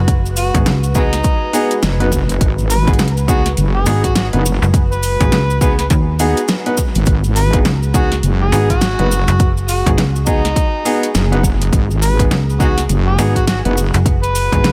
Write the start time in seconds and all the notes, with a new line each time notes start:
Already playing: F#1 G#3 F#4 B4
0.08 kick, closed hi-hat, cabasa
0.26 cabasa
0.36 F#4, open hi-hat, cabasa
0.54 G#1 B3 D#4 F#4 G#4, kick, closed hi-hat, cabasa
0.66 C#2, snare, closed hi-hat, cabasa
0.83 cabasa
0.95 F#3 B3 D#4 F#4 G#4, kick, cabasa
1.13 snare, closed hi-hat, cabasa
1.24 kick, closed hi-hat, cabasa
1.53 B3 D#4 F#4 G#4, open hi-hat, cabasa
1.71 closed hi-hat, cabasa
1.83 F#1, snare, closed hi-hat, cabasa
2.00 B3 D#4 F#4 B4, closed hi-hat
2.12 kick, cabasa
2.29 closed hi-hat, cabasa
2.41 G#1, kick, closed hi-hat, cabasa
2.58 cabasa
2.70 B4, open hi-hat, cabasa
2.87 B3 D#4 F#4 G#4, kick, closed hi-hat, cabasa
2.93 closed hi-hat
2.99 C#2, snare, closed hi-hat, cabasa
3.08 closed hi-hat
3.17 cabasa
3.28 B3 D#4 F#4 G#4, kick, cabasa
3.46 snare, closed hi-hat, cabasa
3.57 F#1, closed hi-hat, cabasa
3.75 G#4
3.86 G#1 B3 D#4 F#4 G#4, snare, open hi-hat, cabasa
4.04 F#4, kick, closed hi-hat, cabasa
4.16 F#4, snare, closed hi-hat, cabasa
4.33 F#1 B3 D#4 F#4 B4, closed hi-hat
4.46 cabasa
4.62 F#1, cabasa
4.74 kick, closed hi-hat, cabasa
4.91 B4, cabasa
5.03 open hi-hat, cabasa
5.20 G#1 B3 D#4 F#4 G#4, kick, closed hi-hat, cabasa
5.32 C#2, snare, closed hi-hat, cabasa
5.50 cabasa
5.61 B3 D#4 F#4 G#4 B4, kick, cabasa
5.79 B4, snare, closed hi-hat, cabasa
5.90 D#2, kick, closed hi-hat, cabasa
6.19 B3 D#4 F#4 G#4, open hi-hat, cabasa
6.37 closed hi-hat, cabasa
6.48 snare, closed hi-hat, cabasa
6.66 B3 D#4 F#4 B4, closed hi-hat
6.77 kick, cabasa
6.95 G#1, closed hi-hat, cabasa
7.06 G#1 G#4, kick, closed hi-hat, cabasa
7.24 cabasa
7.36 B4, open hi-hat, cabasa
7.53 B3 D#4 F#4 G#4, kick, closed hi-hat, cabasa
7.65 C#2, snare, closed hi-hat, cabasa
7.83 cabasa
7.94 B3 D#4 F#4 G#4, kick, cabasa
8.12 snare, closed hi-hat, cabasa
8.23 F#1, closed hi-hat, cabasa
8.41 G#4
8.52 G#1 B3 D#4 F#4 G#4, snare, open hi-hat, cabasa
8.70 F#4, kick, closed hi-hat, cabasa
8.81 snare, closed hi-hat, cabasa
8.99 F#1 B3 D#4 F#4 B4, closed hi-hat
9.11 cabasa
9.28 F#1, closed hi-hat, cabasa
9.40 kick, closed hi-hat, cabasa
9.57 cabasa
9.68 F#4, open hi-hat, cabasa
9.86 G#1 B3 D#4 F#4 G#4, kick, closed hi-hat, cabasa
9.98 C#2, snare, closed hi-hat, cabasa
10.16 cabasa
10.27 B3 D#4 F#4 G#4, kick, cabasa
10.45 snare, closed hi-hat, cabasa
10.56 kick, closed hi-hat, cabasa
10.85 B3 D#4 F#4 G#4, open hi-hat, cabasa
11.03 closed hi-hat, cabasa
11.15 F#1, snare, closed hi-hat, cabasa
11.32 B3 D#4 F#4 B4, closed hi-hat
11.43 kick, cabasa
11.61 closed hi-hat, cabasa
11.73 G#1, kick, closed hi-hat, cabasa
11.91 cabasa
12.01 B4, open hi-hat, cabasa
12.19 B3 D#4 F#4 G#4, kick, closed hi-hat, cabasa
12.31 C#2, snare, closed hi-hat, cabasa
12.50 cabasa
12.60 B3 D#4 F#4 G#4, kick, cabasa
12.78 snare, closed hi-hat, cabasa
12.89 F#1, closed hi-hat, cabasa
13.06 G#4
13.18 G#1 B3 D#4 F#4 G#4, snare, open hi-hat, cabasa
13.36 F#4, kick, closed hi-hat, cabasa
13.47 F#4, snare, closed hi-hat, cabasa
13.65 F#1 B3 D#4 F#4 B4, closed hi-hat
13.77 cabasa
13.94 F#1, closed hi-hat, cabasa
14.06 kick, closed hi-hat, cabasa
14.23 B4, closed hi-hat, cabasa
14.35 open hi-hat, cabasa
14.52 G#1 B3 D#4 F#4 G#4, kick, closed hi-hat, cabasa
14.64 C#2, snare, closed hi-hat, cabasa